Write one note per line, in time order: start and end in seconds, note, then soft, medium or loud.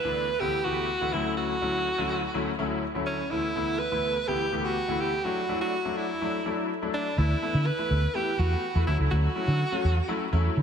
0.00 0.27 D2 medium
0.00 0.42 B4 loud
0.04 0.27 E3 medium
0.04 0.27 A3 medium
0.04 0.27 B3 medium
0.04 0.27 D4 medium
0.40 0.56 D2 medium
0.40 0.56 E3 medium
0.40 0.56 A3 medium
0.40 0.56 B3 medium
0.40 0.56 E4 medium
0.40 0.66 G4 loud
0.65 0.88 D2 medium
0.65 0.88 E3 medium
0.65 0.88 A3 medium
0.65 0.88 B3 medium
0.65 1.15 F#4 loud
0.65 0.88 G4 medium
1.01 1.12 D2 medium
1.01 1.13 E3 medium
1.01 1.12 A3 medium
1.01 1.13 B3 medium
1.01 1.12 E4 medium
1.13 1.52 D2 medium
1.13 1.52 F#3 medium
1.13 1.52 A3 medium
1.13 1.52 C#4 medium
1.13 1.37 E4 medium
1.13 1.52 E4 medium
1.37 2.78 F#4 loud
1.61 1.84 D2 medium
1.61 1.85 F#3 medium
1.61 1.85 A3 medium
1.61 1.85 C#4 medium
1.61 1.85 E4 medium
1.98 2.21 D2 medium
1.98 2.21 F#3 medium
1.98 2.21 A3 medium
1.98 2.21 C#4 medium
1.98 2.21 E4 medium
2.34 2.49 D2 medium
2.34 2.49 F#3 medium
2.34 2.49 A3 medium
2.34 2.50 C#4 medium
2.34 2.50 E4 medium
2.58 2.81 D2 medium
2.58 2.81 F#3 medium
2.58 2.81 A3 medium
2.58 2.81 C#4 medium
2.58 2.82 E4 medium
2.95 3.18 D2 medium
2.95 3.18 F#3 medium
2.95 3.18 A3 medium
2.95 3.18 C#4 medium
2.95 3.18 E4 medium
3.07 3.32 C#4 medium
3.31 3.46 D2 medium
3.31 3.46 E3 medium
3.31 3.46 A3 medium
3.31 3.46 B3 medium
3.31 3.81 E4 loud
3.31 3.47 E4 medium
3.55 3.78 D2 medium
3.55 3.78 E3 medium
3.55 3.78 A3 medium
3.55 3.78 B3 medium
3.55 3.78 E4 medium
3.79 4.29 B4 loud
3.91 4.14 D2 medium
3.91 4.14 E3 medium
3.91 4.14 A3 medium
3.91 4.15 B3 medium
3.91 4.15 E4 medium
4.28 4.43 D2 medium
4.28 4.43 E3 medium
4.28 4.43 A3 medium
4.28 4.43 B3 medium
4.28 4.43 E4 medium
4.28 4.57 G4 loud
4.52 4.75 D2 medium
4.52 4.75 E3 medium
4.52 4.75 A3 medium
4.52 4.75 B3 medium
4.52 4.75 G4 medium
4.57 4.66 G4 medium
4.64 5.02 F#4 loud
4.88 5.11 D2 medium
4.88 5.11 E3 medium
4.88 5.11 A3 medium
4.88 5.11 B3 medium
4.88 5.11 E4 medium
5.00 5.26 G4 medium
5.24 5.40 F#3 medium
5.24 5.40 A3 medium
5.24 5.40 D4 medium
5.24 5.40 E4 medium
5.24 5.61 F#4 loud
5.49 5.72 F#3 medium
5.49 5.72 A3 medium
5.49 5.72 D4 medium
5.49 5.72 E4 medium
5.61 5.99 F#4 medium
5.85 6.08 F#3 medium
5.85 6.08 A3 medium
5.85 6.08 D4 medium
5.85 6.08 E4 medium
5.97 6.70 E4 medium
6.21 6.37 F#3 medium
6.21 6.37 A3 medium
6.21 6.37 D4 medium
6.21 6.37 E4 medium
6.45 6.68 F#3 medium
6.45 6.68 A3 medium
6.45 6.69 D4 medium
6.45 6.69 E4 medium
6.82 7.05 F#3 medium
6.82 7.05 A3 medium
6.82 7.05 D4 medium
6.82 7.05 E4 medium
6.94 7.20 D4 medium
7.18 7.33 D2 medium
7.18 7.33 E3 medium
7.18 7.33 A3 medium
7.18 7.33 B3 medium
7.18 7.68 E4 loud
7.18 7.34 E4 medium
7.42 7.65 E3 medium
7.42 7.65 A3 medium
7.42 7.65 B3 medium
7.42 7.65 E4 medium
7.54 7.69 D3 medium
7.67 8.17 B4 loud
7.78 8.01 E3 medium
7.78 8.01 A3 medium
7.78 8.01 B3 medium
7.78 8.02 E4 medium
7.90 8.05 D2 medium
8.15 8.30 E3 medium
8.15 8.30 A3 medium
8.15 8.30 B3 medium
8.15 8.30 E4 medium
8.15 8.41 G4 loud
8.39 8.54 E2 medium
8.39 8.62 E3 medium
8.39 8.62 A3 medium
8.39 8.62 B3 medium
8.39 8.62 F#4 medium
8.39 8.87 F#4 loud
8.75 8.83 E2 medium
8.75 8.87 E3 medium
8.75 8.86 A3 medium
8.75 8.87 B3 medium
8.75 8.86 E4 medium
8.87 8.95 D2 medium
8.87 9.26 F#3 medium
8.87 9.26 A3 medium
8.87 9.26 C#4 medium
8.87 8.98 E4 medium
8.87 9.26 E4 medium
8.99 9.07 C#2 medium
9.11 9.26 D2 loud
9.11 10.53 F#4 loud
9.35 9.58 F#3 medium
9.35 9.59 A3 medium
9.35 9.59 C#4 medium
9.35 9.59 E4 medium
9.48 9.62 D3 medium
9.72 9.95 F#3 medium
9.72 9.95 A3 medium
9.72 9.95 C#4 medium
9.72 9.95 F#4 medium
9.84 9.99 E2 medium
10.08 10.23 F#3 medium
10.08 10.24 A3 medium
10.08 10.24 C#4 medium
10.08 10.24 E4 medium
10.32 10.47 E2 medium
10.32 10.55 F#3 medium
10.32 10.55 A3 medium
10.32 10.55 C#4 medium
10.32 10.56 E4 loud
10.57 10.62 D3 loud